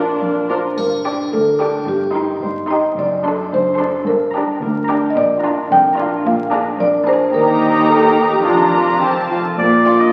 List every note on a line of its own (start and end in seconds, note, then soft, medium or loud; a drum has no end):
0.00 0.48 A#2 soft
0.00 0.80 A#2 soft
0.00 0.49 D4 soft
0.00 1.04 D4 soft
0.00 0.20 F4 soft
0.21 0.66 F2 soft
0.21 0.80 F4 soft
0.49 0.58 D4 soft
0.49 0.58 F4 soft
0.49 1.31 A#4 soft
0.49 0.58 A#4 soft
0.49 0.76 C5 soft
0.77 1.21 G1 medium
0.77 1.86 G2 soft
0.77 1.21 G2 medium
0.77 1.29 A#4 medium
0.77 triangle soft
1.04 1.89 D4 soft
1.04 1.26 D4 soft
1.04 1.25 G4 soft
1.04 1.26 D6 soft
1.32 1.76 D2 soft
1.32 1.76 D2 medium
1.32 1.84 A4 medium
1.32 1.89 A#4 soft
1.60 1.80 D4 soft
1.60 2.68 G4 soft
1.60 1.80 G4 soft
1.60 1.81 D6 soft
1.87 2.31 G1 medium
1.87 3.00 G2 soft
1.87 2.31 G2 medium
1.87 2.39 G4 medium
2.14 3.00 D#4 soft
2.14 2.35 D#4 soft
2.14 2.35 G4 soft
2.14 2.35 C6 soft
2.42 2.86 G1 medium
2.42 2.86 G2 medium
2.42 3.51 C5 soft
2.69 2.91 D#4 soft
2.69 3.00 G4 soft
2.69 2.90 G4 soft
2.69 2.96 D#5 medium
2.69 2.90 C6 soft
2.97 3.41 F#1 medium
2.97 4.09 F#2 soft
2.97 3.41 F#2 medium
2.97 3.49 D5 medium
3.25 4.34 D4 soft
3.25 3.46 D4 medium
3.25 3.45 A4 soft
3.25 3.45 C6 soft
3.52 3.96 F#1 medium
3.52 3.96 F#2 medium
3.52 4.09 C5 soft
3.52 4.04 C5 medium
3.79 4.00 D4 soft
3.79 4.09 A4 soft
3.79 4.00 A4 medium
3.79 4.00 C6 soft
4.07 4.51 G1 medium
4.07 5.19 G2 soft
4.07 4.51 G2 medium
4.07 4.58 A#4 medium
4.34 5.43 D4 soft
4.34 4.55 D4 medium
4.34 4.55 G4 medium
4.34 4.55 A#5 medium
4.62 5.05 D2 medium
4.62 5.70 A#4 soft
4.88 5.10 D4 medium
4.88 5.19 G4 soft
4.88 5.10 G4 medium
4.88 5.09 A#5 medium
5.10 5.17 D#5 medium
5.16 5.59 A#1 medium
5.16 5.59 A#2 medium
5.16 6.24 A#2 medium
5.16 5.67 D5 medium
5.44 6.52 D4 soft
5.44 5.64 D4 medium
5.44 5.64 F4 medium
5.44 5.64 A#5 medium
5.71 6.14 F1 medium
5.71 6.14 F2 medium
5.71 6.78 A#4 soft
5.71 6.22 G5 medium
5.98 6.18 D4 medium
5.98 7.36 F4 soft
5.98 6.19 F4 medium
5.98 6.18 A#5 medium
6.25 6.68 A#1 medium
6.25 6.68 A#2 medium
6.25 7.36 A#2 medium
6.25 6.76 F5 medium
6.52 6.72 D4 medium
6.52 7.36 D4 soft
6.52 6.73 G#4 medium
6.52 6.73 A#5 medium
6.79 7.22 F1 medium
6.79 7.22 F2 medium
6.79 7.88 A#4 soft
6.79 7.05 D5 medium
7.06 7.26 D4 medium
7.06 7.36 G#4 medium
7.06 7.27 G#4 medium
7.06 7.32 C5 medium
7.06 7.27 A#5 medium
7.33 8.41 D#2 medium
7.33 8.47 D#3 medium
7.33 8.41 D#4 medium
7.33 8.41 G4 medium
7.33 7.85 A#4 medium
7.33 8.41 A#5 medium
7.62 8.47 D#4 soft
7.89 8.28 A4 medium
7.89 8.73 A#4 soft
8.16 8.47 G4 soft
8.32 8.45 G4 medium
8.45 9.38 F1 medium
8.45 9.38 F2 medium
8.45 9.00 F3 soft
8.45 9.01 D4 soft
8.45 9.02 F4 soft
8.45 8.98 F4 medium
8.45 9.01 A#5 soft
8.73 9.29 F4 soft
8.73 9.04 A#4 soft
9.01 10.12 F3 soft
9.01 9.37 C4 soft
9.01 9.09 G4 medium
9.01 9.38 A5 soft
9.30 10.12 F4 soft
9.30 9.39 F4 soft
9.30 9.60 A4 soft
9.58 10.04 A#1 medium
9.58 10.04 A#2 medium
9.58 10.12 A#2 soft
9.58 10.12 A#3 soft
9.58 10.12 F4 soft
9.58 10.02 D5 medium
9.85 9.94 A#3 soft
9.85 10.12 D4 soft
9.85 9.94 F4 soft
9.85 9.93 D5 soft
10.00 10.12 D#5 medium